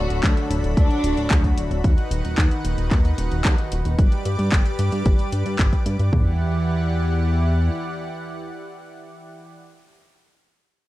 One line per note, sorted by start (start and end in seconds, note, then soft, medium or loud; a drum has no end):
0.00 1.80 D3 medium
0.00 1.01 F#3 medium
0.00 1.01 A3 medium
0.00 1.01 D4 medium
0.00 1.80 D4 medium
0.00 0.46 F#4 medium
0.00 3.95 F#4 medium
0.00 1.01 A4 loud
0.00 1.80 A4 medium
0.00 1.82 B5 medium
0.10 0.21 D1 medium
0.10 closed hi-hat soft
0.23 0.34 D2 medium
0.23 kick loud
0.23 clap loud
0.23 closed hi-hat medium
0.37 closed hi-hat soft
0.50 0.61 D1 medium
0.50 closed hi-hat medium
0.64 0.75 D1 medium
0.64 closed hi-hat soft
0.77 0.88 D2 loud
0.77 1.53 D4 loud
0.77 kick loud
0.77 closed hi-hat medium
0.91 closed hi-hat soft
1.03 1.15 D1 medium
1.03 1.81 F#3 medium
1.03 1.81 A3 medium
1.03 1.81 D4 medium
1.03 1.81 F#4 medium
1.03 closed hi-hat medium
1.17 1.28 D1 medium
1.17 closed hi-hat soft
1.31 1.52 D2 loud
1.31 kick loud
1.31 clap loud
1.31 closed hi-hat medium
1.44 kick medium
1.44 closed hi-hat soft
1.57 1.68 D1 medium
1.57 closed hi-hat medium
1.71 1.82 D1 medium
1.71 closed hi-hat soft
1.84 1.95 D#2 loud
1.84 3.96 D#3 medium
1.84 3.97 D#4 medium
1.84 3.96 B4 medium
1.84 3.96 F#5 medium
1.84 kick loud
1.84 closed hi-hat medium
1.98 closed hi-hat soft
2.11 2.22 D#1 loud
2.11 closed hi-hat medium
2.24 2.35 D#1 medium
2.24 closed hi-hat soft
2.38 2.49 D#2 medium
2.38 kick loud
2.38 clap loud
2.38 closed hi-hat medium
2.51 closed hi-hat soft
2.65 2.75 D#1 medium
2.65 closed hi-hat medium
2.78 2.89 D#1 medium
2.78 closed hi-hat soft
2.91 3.13 D#2 medium
2.91 kick loud
2.91 clap medium
2.91 closed hi-hat medium
3.05 closed hi-hat soft
3.18 3.29 D#1 medium
3.18 closed hi-hat medium
3.31 3.42 D#1 medium
3.31 closed hi-hat soft
3.45 3.56 D#2 loud
3.45 kick loud
3.45 clap loud
3.45 closed hi-hat medium
3.58 closed hi-hat soft
3.72 3.83 D#1 medium
3.72 closed hi-hat medium
3.85 3.96 D#1 medium
3.85 closed hi-hat soft
3.99 4.09 G1 loud
3.99 6.11 G3 medium
3.99 6.11 G4 medium
3.99 6.11 B4 medium
3.99 6.11 D5 medium
3.99 6.11 D6 medium
3.99 kick loud
3.99 closed hi-hat medium
4.12 closed hi-hat soft
4.25 4.36 G2 loud
4.25 closed hi-hat medium
4.39 4.50 G2 medium
4.39 closed hi-hat soft
4.52 4.63 G1 medium
4.52 kick loud
4.52 clap loud
4.52 closed hi-hat medium
4.66 closed hi-hat soft
4.79 4.90 G2 medium
4.79 closed hi-hat medium
4.92 5.03 G2 medium
4.92 closed hi-hat soft
5.06 5.17 G1 loud
5.06 kick loud
5.06 closed hi-hat medium
5.19 closed hi-hat soft
5.32 5.43 G2 medium
5.32 closed hi-hat medium
5.46 5.57 G2 medium
5.46 closed hi-hat soft
5.59 5.70 G1 medium
5.59 kick loud
5.59 clap loud
5.59 closed hi-hat medium
5.73 kick medium
5.73 closed hi-hat soft
5.86 5.97 G2 medium
5.86 closed hi-hat medium
5.99 6.10 G2 medium
5.99 closed hi-hat soft
6.13 7.70 E2 medium
6.13 9.56 E3 medium
6.13 9.56 E4 medium
6.13 9.56 G4 medium
6.13 9.56 D5 medium
6.13 9.56 F#5 medium
6.13 kick loud
6.13 floor tom loud